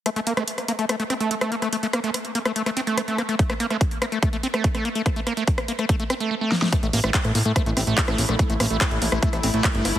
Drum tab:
HH |xxxxxxxxxxxxxxxx|xxxxxxxxxxxxxxxx|xxxxxxxxxxxxxxxx|xxxxxxxxxxxx----|
CP |----------------|----------------|----------------|----------------|
SD |r--r-r--r-r--r-r|--r-r--r-r--r-r-|-r-r--r-r--r-r--|r-r--r-r--r---oo|
BD |----------------|----------------|o---o---o---o---|o---o---o-------|

HH |xxoxxxoxxxoxxxox|xxoxxxoxxxoxxxo-|
CP |----x-------x---|----x-------x---|
SD |r--r-r--r-r--r-r|--r-r--r-r--r-r-|
BD |o---o---o---o---|o---o---o---o---|